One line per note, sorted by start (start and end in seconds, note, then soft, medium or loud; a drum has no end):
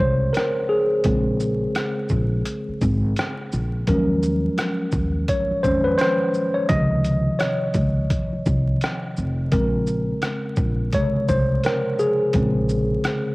0.00 0.29 C2 medium
0.00 1.05 C#3 medium
0.00 1.05 G#3 medium
0.00 1.06 C4 medium
0.00 0.69 G#4 soft
0.00 0.33 A#4 medium
0.00 0.31 C5 medium
0.00 3.89 C#5 medium
0.33 0.70 A#4 medium
0.33 cross-stick loud
0.33 closed hi-hat medium
0.69 2.77 G#4 medium
1.04 1.64 A#1 medium
1.04 2.07 C#3 medium
1.04 2.07 G#3 soft
1.04 2.08 C4 medium
1.04 kick loud
1.04 closed hi-hat medium
1.40 shaker soft
1.75 cross-stick medium
1.75 closed hi-hat medium
2.09 2.40 A#1 medium
2.09 kick medium
2.09 shaker soft
2.46 closed hi-hat medium
2.69 muted upright bass stroke soft
2.81 3.11 G#1 medium
2.81 kick loud
2.81 shaker medium
3.17 cross-stick loud
3.17 closed hi-hat medium
3.52 3.82 A#1 medium
3.52 shaker soft
3.87 4.47 D#2 loud
3.87 4.89 F3 medium
3.87 4.90 F#3 soft
3.87 4.90 G#3 soft
3.87 4.90 C#4 medium
3.87 5.25 A#4 medium
3.87 kick loud
3.87 closed hi-hat medium
4.23 shaker soft
4.58 cross-stick loud
4.58 closed hi-hat medium
4.92 5.22 D#2 medium
4.92 kick medium
4.92 shaker soft
5.28 5.65 C#5 medium
5.28 kick medium
5.28 closed hi-hat medium
5.51 muted upright bass stroke soft
5.63 5.93 F2 medium
5.63 5.95 D#3 soft
5.63 5.95 F3 soft
5.63 5.96 G#3 soft
5.63 5.96 C#4 medium
5.63 5.73 C5 medium
5.63 kick medium
5.63 shaker soft
5.84 5.91 B4 medium
5.98 6.56 C5 medium
5.98 cross-stick loud
5.98 closed hi-hat medium
6.34 shaker soft
6.54 6.70 C#5 medium
6.69 7.29 C#2 medium
6.69 9.48 C3 medium
6.69 9.48 D#3 medium
6.69 9.48 F3 medium
6.69 7.36 D#5 loud
6.69 kick loud
6.69 closed hi-hat medium
7.04 closed hi-hat soft
7.04 shaker soft
7.39 9.12 C#5 medium
7.39 cross-stick medium
7.39 closed hi-hat medium
7.74 8.05 C#2 medium
7.74 kick medium
7.74 closed hi-hat soft
7.74 shaker soft
8.10 kick medium
8.10 closed hi-hat medium
8.33 muted upright bass stroke soft
8.46 8.76 C2 medium
8.46 kick medium
8.46 shaker soft
8.81 cross-stick loud
8.81 closed hi-hat medium
9.17 9.47 F1 medium
9.17 shaker soft
9.52 10.11 A#1 loud
9.52 10.02 C#3 soft
9.52 10.02 G#3 soft
9.52 10.02 C4 medium
9.52 10.89 A#4 medium
9.52 kick loud
9.52 closed hi-hat medium
9.87 shaker soft
10.22 cross-stick medium
10.22 closed hi-hat medium
10.56 10.87 A#1 medium
10.56 kick medium
10.56 shaker soft
10.92 11.26 C3 medium
10.92 11.25 C#3 soft
10.92 11.26 G#3 soft
10.92 11.27 C#5 loud
10.92 kick medium
10.92 closed hi-hat medium
11.16 muted upright bass stroke soft
11.28 11.58 C2 medium
11.28 11.44 C5 medium
11.28 kick medium
11.28 shaker medium
11.64 11.97 A#4 medium
11.64 cross-stick loud
11.64 closed hi-hat medium
11.99 13.35 G#4 medium
11.99 shaker soft
12.33 12.93 A#1 medium
12.33 13.35 C#3 medium
12.33 13.35 G#3 soft
12.33 13.35 C4 medium
12.33 kick loud
12.33 closed hi-hat medium
12.69 shaker soft
13.04 cross-stick medium
13.04 closed hi-hat medium